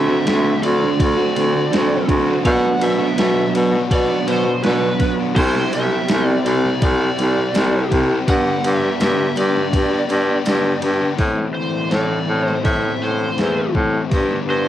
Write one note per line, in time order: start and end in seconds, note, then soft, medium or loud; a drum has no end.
0.00 0.17 D2 loud
0.00 0.23 D3 medium
0.00 0.63 E5 loud
0.07 0.25 A3 medium
0.07 0.25 C4 medium
0.07 0.27 F#4 medium
0.24 0.54 D2 loud
0.24 0.60 D3 medium
0.24 0.62 A3 medium
0.24 0.62 C4 medium
0.24 0.64 F#4 loud
0.24 snare loud
0.24 ride medium
0.61 0.90 D2 loud
0.61 1.17 D3 medium
0.61 0.82 A3 medium
0.61 0.80 C4 medium
0.61 0.78 F#4 medium
0.61 1.00 D5 loud
0.61 ride medium
0.80 1.19 A3 medium
0.80 1.17 C4 medium
0.80 1.16 F#4 medium
0.80 muted overdriven electric guitar stroke medium
0.80 snare soft
1.00 1.27 D2 medium
1.00 2.05 D5 medium
1.00 kick loud
1.00 ride loud
1.17 1.35 A3 medium
1.17 1.36 C4 medium
1.17 1.37 F#4 medium
1.35 1.63 D2 medium
1.35 1.70 D3 medium
1.35 1.55 A3 medium
1.35 1.54 C4 medium
1.35 1.52 F#4 medium
1.35 ride medium
1.53 1.71 A3 medium
1.53 1.72 C4 medium
1.53 1.73 F#4 medium
1.53 muted overdriven electric guitar stroke medium
1.71 2.00 D2 loud
1.71 2.06 D3 loud
1.71 2.07 A3 loud
1.71 2.08 C4 loud
1.71 2.10 F#4 loud
1.71 snare loud
1.71 ride medium
2.07 2.36 D2 loud
2.07 2.42 D3 medium
2.07 2.28 A3 medium
2.07 2.26 C4 medium
2.07 2.25 F#4 medium
2.07 kick medium
2.07 ride medium
2.26 2.44 A3 medium
2.26 2.43 C4 medium
2.26 2.42 F#4 medium
2.43 2.99 B2 medium
2.43 2.72 B2 loud
2.43 2.99 F#3 medium
2.43 2.64 B3 medium
2.43 2.63 D4 loud
2.43 2.61 F#4 loud
2.43 2.83 F#5 loud
2.43 kick loud
2.43 ride loud
2.62 3.01 B3 medium
2.62 3.00 D4 medium
2.62 2.97 F#4 medium
2.62 snare soft
2.81 3.09 B2 medium
2.81 3.51 E5 loud
2.81 ride medium
2.99 3.17 F#3 medium
2.99 3.17 B3 medium
2.99 3.18 D4 medium
2.99 3.19 F#4 medium
3.16 3.90 B2 loud
3.16 3.45 B2 medium
3.16 3.51 F#3 loud
3.16 3.53 B3 loud
3.16 3.55 D4 loud
3.16 3.55 F#4 loud
3.16 snare loud
3.16 ride medium
3.53 3.82 B2 loud
3.53 4.08 F#3 medium
3.53 3.74 B3 medium
3.53 3.73 D4 medium
3.53 3.70 F#4 medium
3.53 ride medium
3.71 4.11 B3 medium
3.71 4.10 D4 medium
3.71 4.07 F#4 medium
3.71 muted overdriven electric guitar stroke medium
3.71 snare soft
3.91 4.18 B2 medium
3.91 4.29 D5 medium
3.91 kick loud
3.91 ride loud
4.08 4.26 F#3 medium
4.08 4.27 B3 medium
4.08 4.28 D4 medium
4.08 4.28 F#4 medium
4.26 4.62 B2 medium
4.26 4.55 B2 medium
4.26 4.62 F#3 medium
4.26 4.47 B3 medium
4.26 4.46 D4 medium
4.26 4.43 F#4 medium
4.26 4.63 C5 loud
4.26 ride medium
4.45 4.63 B3 medium
4.45 4.64 D4 medium
4.45 4.65 F#4 medium
4.45 muted overdriven electric guitar stroke medium
4.62 5.34 B2 loud
4.62 4.91 B2 medium
4.62 4.98 F#3 loud
4.62 5.00 B3 loud
4.62 5.01 D4 loud
4.62 5.01 F#4 loud
4.62 5.14 B4 loud
4.62 snare loud
4.62 ride medium
4.99 5.34 B2 medium
4.99 5.34 F#3 medium
4.99 5.20 B3 medium
4.99 5.20 D4 medium
4.99 5.17 F#4 medium
4.99 kick medium
4.99 ride medium
5.18 5.36 F#3 medium
5.18 5.36 B3 medium
5.18 5.38 D4 medium
5.18 5.34 F#4 medium
5.36 5.64 C2 loud
5.36 5.91 C3 loud
5.36 6.10 G3 medium
5.36 5.57 C4 loud
5.36 5.56 E4 loud
5.36 5.54 G4 medium
5.36 5.74 C5 loud
5.36 kick loud
5.36 tambourine medium
5.36 crash loud
5.55 5.93 C4 medium
5.55 5.92 E4 medium
5.55 5.91 G4 medium
5.55 snare soft
5.73 6.01 C2 medium
5.73 6.28 E5 loud
5.73 ride medium
5.73 tambourine medium
5.91 6.10 G3 medium
5.91 6.10 C4 medium
5.91 6.11 E4 medium
5.91 6.12 G4 medium
6.09 6.37 C2 loud
6.09 6.82 C3 medium
6.09 6.44 G3 loud
6.09 6.45 C4 loud
6.09 6.47 E4 loud
6.09 6.48 G4 loud
6.09 snare loud
6.09 ride medium
6.09 tambourine medium
6.28 6.47 D5 loud
6.45 6.73 C2 loud
6.45 7.19 G3 medium
6.45 6.66 C4 medium
6.45 6.65 E4 medium
6.45 6.63 G4 medium
6.45 6.83 D5 loud
6.45 ride medium
6.45 tambourine medium
6.64 7.02 C4 medium
6.64 7.01 E4 medium
6.64 6.99 G4 medium
6.64 muted overdriven electric guitar stroke medium
6.64 snare soft
6.82 7.10 C2 loud
6.82 7.88 D5 medium
6.82 kick loud
6.82 ride loud
6.82 tambourine soft
7.00 7.19 G3 medium
7.00 7.19 C4 medium
7.00 7.21 E4 medium
7.00 7.22 G4 medium
7.18 7.46 C2 medium
7.18 7.53 C3 medium
7.18 7.55 G3 medium
7.18 7.38 C4 medium
7.18 7.38 E4 medium
7.18 ride medium
7.18 tambourine medium
7.22 7.36 G4 medium
7.37 7.55 C4 medium
7.37 7.57 E4 medium
7.37 7.57 G4 medium
7.37 muted overdriven electric guitar stroke soft
7.54 7.83 C2 loud
7.54 8.25 C3 loud
7.54 7.90 G3 loud
7.54 7.91 C4 loud
7.54 7.93 E4 loud
7.54 7.93 G4 loud
7.54 snare loud
7.54 ride medium
7.54 tambourine medium
7.91 8.19 C2 loud
7.91 8.26 C3 medium
7.91 8.27 G3 medium
7.91 8.10 C4 medium
7.91 8.10 E4 medium
7.91 8.08 G4 medium
7.91 kick medium
7.91 ride medium
8.08 8.27 C4 medium
8.08 8.28 E4 medium
8.08 8.29 G4 medium
8.13 8.29 G3 medium
8.26 8.82 G2 loud
8.26 8.56 G2 loud
8.26 8.82 D3 medium
8.26 8.46 G3 medium
8.26 8.46 B3 loud
8.26 8.45 D4 loud
8.26 8.43 G4 loud
8.26 8.67 F#5 loud
8.26 kick loud
8.26 ride loud
8.26 tambourine medium
8.44 8.83 G3 medium
8.44 8.83 B3 medium
8.44 8.81 D4 medium
8.44 8.80 G4 medium
8.64 8.92 G2 medium
8.64 9.00 E5 medium
8.64 ride medium
8.64 tambourine medium
8.82 9.00 G3 medium
8.82 9.00 B3 medium
8.82 9.00 D4 medium
8.82 9.01 G4 medium
8.99 9.73 G2 medium
8.99 9.29 G2 loud
8.99 9.74 D3 loud
8.99 9.34 G3 loud
8.99 9.36 B3 loud
8.99 9.36 D4 loud
8.99 9.38 G4 loud
8.99 9.38 E5 medium
8.99 snare loud
8.99 ride loud
8.99 tambourine loud
9.36 9.65 G2 loud
9.36 9.56 G3 medium
9.36 9.55 B3 medium
9.36 9.54 D4 medium
9.36 9.53 G4 medium
9.36 10.80 D5 medium
9.36 ride medium
9.36 tambourine medium
9.54 9.93 G3 medium
9.54 9.92 B3 medium
9.54 9.91 D4 medium
9.54 9.90 G4 medium
9.54 muted overdriven electric guitar stroke medium
9.54 snare soft
9.73 10.01 G2 medium
9.73 kick loud
9.73 ride loud
9.91 10.08 G3 medium
9.91 10.09 B3 medium
9.91 10.10 D4 medium
9.91 10.11 G4 medium
10.09 10.38 G2 medium
10.09 10.28 D3 medium
10.09 10.30 G3 medium
10.09 10.28 B3 medium
10.09 10.28 D4 medium
10.09 10.27 G4 medium
10.09 ride medium
10.09 tambourine medium
10.28 10.45 G3 medium
10.28 10.46 B3 medium
10.28 10.46 D4 medium
10.28 10.47 G4 medium
10.28 muted overdriven electric guitar stroke soft
10.45 11.17 G2 loud
10.45 10.74 G2 medium
10.45 11.17 D3 loud
10.45 10.81 G3 loud
10.45 10.82 B3 loud
10.45 10.83 D4 loud
10.45 10.84 G4 loud
10.45 snare medium
10.45 ride medium
10.45 tambourine loud
10.81 11.11 G2 medium
10.81 11.17 D3 medium
10.81 11.03 G3 medium
10.81 11.02 B3 medium
10.81 11.01 D4 medium
10.81 ride medium
10.85 10.99 G4 medium
11.01 11.19 G3 medium
11.01 11.19 B3 medium
11.01 11.18 D4 medium
11.01 11.17 G4 medium
11.18 12.29 A2 medium
11.18 11.46 A2 loud
11.18 11.90 E3 medium
11.18 11.91 A3 medium
11.18 11.91 C4 loud
11.18 11.93 E4 medium
11.18 kick loud
11.18 open hi-hat medium
11.38 snare soft
11.54 11.93 C5 medium
11.91 12.19 A2 medium
11.91 12.64 E3 medium
11.91 12.30 A3 medium
11.91 12.28 C4 medium
11.91 12.26 E4 medium
11.91 12.47 D5 medium
11.91 snare loud
11.91 open hi-hat medium
12.28 12.55 A2 medium
12.28 12.65 A3 medium
12.28 12.66 C4 medium
12.28 12.66 E4 medium
12.47 12.65 C5 medium
12.47 snare soft
12.64 13.75 A2 medium
12.64 12.92 A2 loud
12.64 13.35 E3 medium
12.64 13.37 A3 medium
12.64 13.38 C4 medium
12.64 13.39 E4 loud
12.64 13.03 E5 medium
12.64 kick loud
12.64 open hi-hat medium
13.02 13.29 A2 medium
13.02 13.72 C5 medium
13.37 13.66 E2 medium
13.37 14.09 E3 medium
13.37 14.10 A3 medium
13.37 14.10 C4 medium
13.37 14.11 E4 medium
13.37 snare medium
13.37 open hi-hat medium
13.74 14.02 A2 medium
13.74 kick medium
14.10 14.68 G2 medium
14.10 14.38 G2 medium
14.10 14.68 D3 medium
14.10 14.68 G3 medium
14.10 14.68 B3 medium
14.10 14.68 D4 loud
14.10 kick loud
14.10 open hi-hat medium
14.31 snare soft
14.48 14.68 G2 medium
14.48 14.68 C5 medium